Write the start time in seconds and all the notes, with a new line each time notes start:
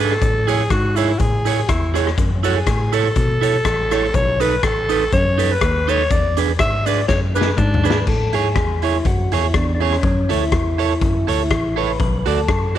Already playing: G#2
0.00 D4 G#4 A4 B4
0.11 cross-stick
0.22 A2, kick, closed hi-hat, cabasa
0.47 E4 G#4 C#5, closed hi-hat, cabasa
0.70 G#2 F#4, kick, cross-stick, closed hi-hat, cabasa
0.96 E4 G#4 C#5, closed hi-hat, cabasa
1.18 A2 G#4, kick, closed hi-hat, cabasa
1.45 E4 G#4 C#5, closed hi-hat, cabasa
1.68 E2 E4, kick, cross-stick, closed hi-hat, cabasa
1.94 E4 G#4 C#5, cross-stick, closed hi-hat, cabasa
2.07 cross-stick
2.18 F#2, kick, closed hi-hat, cabasa
2.43 E4 F#4 A4 C#5, closed hi-hat, cabasa
2.56 G#4
2.67 A2, kick, cross-stick, closed hi-hat, cabasa
2.93 E4 A4 C#5, closed hi-hat, cabasa
3.16 B2, kick, closed hi-hat, cabasa
3.41 E4 A4 C#5, closed hi-hat, cabasa
3.65 A1, kick, cross-stick, closed hi-hat, cabasa
3.91 E4 A4 C#5, cross-stick, open hi-hat, cabasa
4.14 B1 C#5, kick, closed hi-hat, cabasa
4.40 D#4 A4 B4, closed hi-hat, cabasa
4.63 A1 A4, kick, cross-stick, closed hi-hat, cabasa
4.89 D#4 A4 B4, closed hi-hat, cabasa
5.12 F#2 C#5, kick, closed hi-hat, cabasa
5.38 D#4 A4 B4, closed hi-hat, cabasa
5.52 B4
5.61 D#2, kick, cross-stick, closed hi-hat, cabasa
5.88 D#4 A4 B4 C#5, open hi-hat, cabasa
6.10 E2 D5, kick, closed hi-hat, cabasa
6.37 D4 G#4 B4, closed hi-hat, cabasa
6.59 G#2 E5, kick, cross-stick, closed hi-hat, cabasa
6.86 D4 G#4 B4 D5, closed hi-hat, cabasa
7.08 F#2 C#5, kick, snare, cabasa
7.35 D4 G#4 B4, cabasa
7.41 snare
7.58 G#2 D4, kick, mid tom, cabasa
7.74 floor tom
7.84 D4 G#4 B4, cabasa
7.90 snare
8.07 A2 A4, kick, crash
8.33 G#2 E4 G#4 C#5, closed hi-hat
8.55 E2, muted clean electric guitar stroke, kick, cross-stick, closed hi-hat
8.82 E4 G#4 C#5, closed hi-hat
9.05 F#2 F#4, muted clean electric guitar stroke, kick, closed hi-hat
9.32 E2 E4 G#4 C#5, closed hi-hat
9.54 E2 D4, kick, cross-stick, closed hi-hat
9.75 D4
9.80 C#4 E4 G#4 C#5, open hi-hat
9.92 cross-stick
10.03 F#2 C#4, kick, closed hi-hat
10.29 D2 E4 A4 C#5, closed hi-hat
10.52 E2, muted clean electric guitar stroke, kick, cross-stick, closed hi-hat
10.78 E4 A4 C#5, closed hi-hat
11.01 F#2, muted clean electric guitar stroke, kick, closed hi-hat
11.27 D2 E4 A4 C#5, closed hi-hat
11.51 A1, kick, cross-stick, closed hi-hat
11.76 E4 A4 B4 C#5, open hi-hat
12.00 B1 B4, kick, closed hi-hat
12.19 B4
12.26 D2 F#4 A4 D5, closed hi-hat
12.48 F#2, muted clean electric guitar stroke, kick, cross-stick, closed hi-hat
12.75 F#4, closed hi-hat